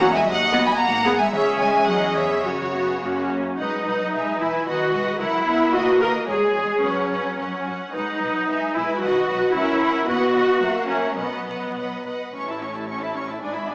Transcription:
Already playing: double bass section E2, cello section A#3, violin section F#5 A#5
0.00 viola section C#4 F#4
0.14 cello section G#3, violin section E5 G#5
0.26 double bass section D#2, cello section F#3, violin section D#5 F#5
0.52 viola section B3 F#4
0.66 cello section B3, violin section G#5 B5
0.76 double bass section G#1, cello section A#3, violin section A#5
0.82 violin section F#5
1.05 viola section B3 G#4
1.18 cello section G#3, violin section E5 G#5
1.31 double bass section C#2, cello section E3, viola section C#4 G#4, violin section C#5 E5
1.58 cello section G#3, violin section G#5
1.63 violin section E5
1.85 double bass section E2, cello section F#3, viola section C#4 G#4, violin section D#5 F#5
2.15 cello section E3, violin section C#5 E5
2.43 double bass section F#2, cello section C#3, viola section C#4 F#4, violin section F#4 C#5
2.73 viola section B3
3.02 double bass section F#2, viola section A#3 C#4 F#4
3.58 double bass section B1, cello section G#3, viola section D#4, violin section B4 D#5 F#5
3.85 double bass section B1, cello section F#3, violin section B4 D#5 F#5
4.13 double bass section B1, cello section G#3, violin section B4 E5 G#5
4.39 double bass section B1, cello section E3, viola section E4, violin section B4 E5 G#5
4.66 double bass section B1, cello section D#3, viola section F#4, violin section B4 D#5 F#5
4.92 double bass section B1, cello section G#3, violin section B4 D#5 F#5
5.20 double bass section C#2, cello section F#3, viola section E4, violin section A#4 E5 F#5
5.45 double bass section C#2, cello section B3, violin section A#4 E5 F#5
5.72 double bass section D#2, cello section A#3, viola section F#4, violin section B4 D#5
6.00 double bass section D#2, viola section A#4, violin section B4 D#5
6.27 double bass section E2, cello section G#3, violin section G#4 C#5 G#5, viola section G#4
6.54 double bass section E2, violin section G#4 C#5 G#5
6.82 double bass section F#2, cello section F#3, viola section C#4, violin section B4 C#5 F#5
7.10 double bass section F#2, violin section B4 C#5 F#5
7.38 double bass section F#2, viola section C#4, violin section A#4 F#5
7.65 double bass section F#2, violin section F#4 F#5
7.93 double bass section B1, cello section G#3, viola section D#4, violin section B4 F#5
8.19 double bass section B1, cello section F#3, violin section B4 F#5
8.47 double bass section B1, cello section G#3, violin section B4 E5 G#5
8.74 double bass section B1, viola section E4, violin section B4 E5 G#5
9.01 double bass section B1, cello section D#3, viola section F#4, violin section B4 D#5 F#5
9.27 double bass section B1, cello section F#3, violin section B4 D#5 F#5
9.53 double bass section C#2, cello section C#4, viola section E4, violin section A#4 E5 F#5
9.81 double bass section C#2, violin section A#4 E5 F#5
10.07 double bass section D#2, cello section B3, viola section F#4, violin section B4 D#5 F#5
10.34 double bass section D#2, violin section B4 D#5 F#5
10.61 double bass section F#2, cello section A#3, violin section A#4 E5 F#5
10.89 double bass section F#2, viola section C#4, violin section A#4 E5 F#5
11.17 double bass section B1, cello section F#3, viola section B3, violin section B4 D#5 F#5
11.46 double bass section B1, violin section B4 D#5 F#5
11.75 double bass section B1, violin section B4 D#5 F#5
12.04 double bass section B1, violin section B4 D#5 F#5
12.33 double bass section A1, cello section A2, viola section C#4, violin section C#5 C#6
12.47 viola section E4, violin section E5 A5
12.60 viola section C#4, violin section C#5 C#6
12.74 viola section E4, violin section E5 A5
12.87 viola section C#4, violin section C#5 C#6
13.00 viola section E4, violin section E5 A5
13.15 viola section C#4, violin section C#5 C#6
13.27 viola section E4, violin section E5 A5
13.40 double bass section G#1, cello section G#2, viola section D4, violin section D5 G#5
13.53 viola section E4, violin section E5 B5
13.67 viola section D4, violin section D5 G#5

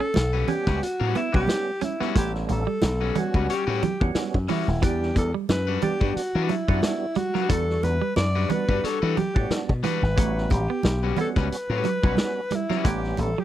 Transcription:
0.00 clean electric guitar C#4, alto saxophone A4
0.14 slap bass B1, snare, closed hi-hat, high conga
0.33 clean electric guitar G3 C#4 F#4 B4
0.48 tonewheel organ G3 B3 C#4 G4, clean electric guitar C#4, alto saxophone G4, closed hi-hat, low conga
0.67 slap bass C#2, clean electric guitar G3 C#4 F#4 B4, kick, snare
0.82 alto saxophone F#4, muted slap bass stroke, closed hi-hat
1.00 slap bass A2, clean electric guitar G3 C#4 F#4 B4
1.15 clean electric guitar B3, alto saxophone E4, closed hi-hat, muted conga
1.32 slap bass B1, clean electric guitar G3 C#4 F#4 B4, tonewheel organ G3 B3 C#4 G4, alto saxophone G4, kick
1.48 muted clean electric guitar stroke, snare, closed hi-hat, high conga
1.81 clean electric guitar C#4, alto saxophone E4, closed hi-hat, high conga
2.00 clean electric guitar G3 B3 C#4 F#4 B4, snare, high conga
2.15 slap bass A1, tonewheel organ G3 B3 C#4 A4, clean electric guitar A3, alto saxophone G4, kick, closed hi-hat, muted conga
2.35 snare
2.49 slap bass A1, alto saxophone A4, muted clean electric guitar stroke, closed hi-hat, muted conga
2.67 clean electric guitar G3
2.82 slap bass B1, snare, closed hi-hat, high conga
3.01 clean electric guitar G3 C#4 F#4 B4
3.15 tonewheel organ G3 B3 C#4 F#4, clean electric guitar G3, closed hi-hat, low conga
3.19 alto saxophone F#4
3.34 slap bass C#2, clean electric guitar G3 C#4 F#4 B4, kick
3.49 clean electric guitar G3 C#4 F#4 C#5, alto saxophone G4, muted slap bass stroke, closed hi-hat
3.67 slap bass A2, clean electric guitar G3 C#4 F#4 B4
3.82 clean electric guitar F#3, closed hi-hat, muted conga, low conga
4.00 slap bass E2, tonewheel organ G3 B3 C#4 F#4, kick
4.15 muted slap bass stroke, snare, closed hi-hat, high conga
4.34 slap bass F#2, kick
4.48 clean electric guitar E3 G3 C#4 F#4 B4, alto saxophone E4, snare, open hi-hat, high conga
4.68 slap bass D#1, snare, high conga
4.82 slap bass E2, clean electric guitar E3, tonewheel organ G3 B3 D4 G4, alto saxophone G4, kick, closed hi-hat, muted conga
5.03 snare
5.16 slap bass E2, alto saxophone A4, muted clean electric guitar stroke, kick, closed hi-hat, muted conga
5.34 clean electric guitar G3
5.49 slap bass F#2, alto saxophone B4, snare, closed hi-hat, high conga
5.67 clean electric guitar G3 D4 F#4 B4
5.81 tonewheel organ G3 B3 D4 G4, clean electric guitar G3, alto saxophone G4, closed hi-hat, low conga
6.01 slap bass G2, clean electric guitar G3 D4 F#4 B4, kick
6.16 alto saxophone F#4, muted slap bass stroke, closed hi-hat
6.35 slap bass E3, clean electric guitar G3 D4 F#4 B4
6.49 clean electric guitar F#3, alto saxophone E4, closed hi-hat, muted conga
6.68 slap bass F#2, tonewheel organ G3 B3 D4 F#4, clean electric guitar G3 D4 F#4 B4, kick
6.82 muted clean electric guitar stroke, snare, closed hi-hat, high conga
7.15 clean electric guitar G3, alto saxophone F#4, closed hi-hat, high conga
7.34 clean electric guitar F#3 G3 D4 F#4 B4, snare, high conga
7.49 slap bass E2, clean electric guitar E3, tonewheel organ G3 B3 D4 F#4, alto saxophone A4, kick, closed hi-hat
7.70 snare
7.83 slap bass E2, alto saxophone B4, muted clean electric guitar stroke, closed hi-hat, muted conga
8.02 clean electric guitar G3
8.16 slap bass F#2, alto saxophone D5, snare, closed hi-hat, high conga
8.35 clean electric guitar G3 D4 F#4 B4
8.48 tonewheel organ G3 B3 D4 F#4, clean electric guitar G3, alto saxophone B4, closed hi-hat, low conga
8.69 slap bass G2, clean electric guitar G3 D4 F#4 B4, kick
8.84 clean electric guitar G3 D4 F#4 C#5, alto saxophone A4, muted slap bass stroke, closed hi-hat
9.02 slap bass E3, clean electric guitar G3 D4 F#4 B4
9.17 clean electric guitar F#3, alto saxophone G4, closed hi-hat, muted conga, low conga
9.34 slap bass A2, tonewheel organ G3 B3 D4 F#4, kick
9.50 muted slap bass stroke, snare, closed hi-hat, high conga
9.69 slap bass B2, kick
9.83 clean electric guitar E3 G3 D4 F#4 B4, alto saxophone B4, snare, closed hi-hat, high conga
10.02 slap bass G#1, snare, high conga
10.16 slap bass A1, tonewheel organ G3 B3 C#4 F#4, clean electric guitar A3, kick, closed hi-hat, muted conga
10.38 snare
10.50 slap bass A1, alto saxophone G4, muted clean electric guitar stroke, kick, closed hi-hat, muted conga
10.70 clean electric guitar B3
10.83 slap bass B1, snare, closed hi-hat, high conga
11.03 clean electric guitar G3 C#4 F#4 B4
11.17 tonewheel organ G3 B3 C#4 F#4, clean electric guitar B3, alto saxophone A4, closed hi-hat, low conga
11.36 slap bass C#2, clean electric guitar G3 C#4 F#4 B4, alto saxophone B4, kick, snare
11.52 muted slap bass stroke, closed hi-hat
11.70 slap bass A2, clean electric guitar G3 C#4 F#4 B4
11.84 clean electric guitar F#3, closed hi-hat, muted conga
12.02 slap bass B1, tonewheel organ G3 B3 C#4 F#4, clean electric guitar G3 C#4 F#4 B4, kick
12.17 muted clean electric guitar stroke, snare, closed hi-hat, high conga
12.50 clean electric guitar G3, closed hi-hat, high conga
12.56 alto saxophone E4
12.69 clean electric guitar F#3 G3 C#4 F#4 B4, snare, high conga
12.84 slap bass A1, tonewheel organ G3 B3 C#4 G4, clean electric guitar A3, alto saxophone G4, kick, closed hi-hat, muted conga
13.04 snare
13.17 slap bass A1, alto saxophone A4, muted clean electric guitar stroke, closed hi-hat, muted conga
13.38 clean electric guitar F#3, alto saxophone G4

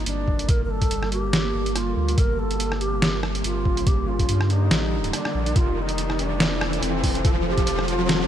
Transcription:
Already playing: ambient pad G3 A#3 A4, riser
0.06 sub bass G1, ney D4, closed hi-hat
0.28 kick
0.39 closed hi-hat
0.49 ney A#4, kick, closed hi-hat
0.64 ney A#4
0.70 ney A4
0.82 kick, closed hi-hat
0.91 sub bass G1, closed hi-hat
1.03 cross-stick
1.12 ney G4, closed hi-hat
1.33 snare, closed hi-hat
1.54 sub bass G1
1.66 closed hi-hat
1.76 ney F4, cross-stick, closed hi-hat
1.97 sub bass D2
2.08 closed hi-hat
2.18 sub bass G1, ambient pad G4, ney A#4, kick, closed hi-hat
2.39 ney A4
2.51 closed hi-hat
2.60 closed hi-hat
2.72 cross-stick
2.81 ney G4, closed hi-hat
3.02 snare, closed hi-hat
3.23 cross-stick
3.35 closed hi-hat
3.44 sub bass G1, ney F4, closed hi-hat
3.65 kick
3.77 closed hi-hat
3.87 ney G4, kick, closed hi-hat
4.08 ney F4
4.19 kick, closed hi-hat
4.29 sub bass G2, closed hi-hat
4.41 cross-stick
4.50 ney D#4, closed hi-hat
4.71 sub bass A1, snare, closed hi-hat
5.04 closed hi-hat
5.13 ney D4, cross-stick, closed hi-hat
5.25 cross-stick
5.35 sub bass A#1
5.46 closed hi-hat
5.56 sub bass F1, ambient pad C4 F4 A4, ney F4, kick, closed hi-hat
5.77 ney F4
5.82 ney D#4
5.89 closed hi-hat
5.98 closed hi-hat
6.10 cross-stick
6.19 ney D4, closed hi-hat
6.40 snare, closed hi-hat
6.61 cross-stick
6.73 closed hi-hat
6.83 sub bass F1, ney C4, closed hi-hat
7.04 kick, open hi-hat
7.15 closed hi-hat
7.25 ney A4, kick, closed hi-hat
7.46 ney A4
7.51 ney G4
7.58 kick, closed hi-hat
7.67 sub bass F1, closed hi-hat
7.79 cross-stick
7.88 ney F4, closed hi-hat
8.09 snare, closed hi-hat

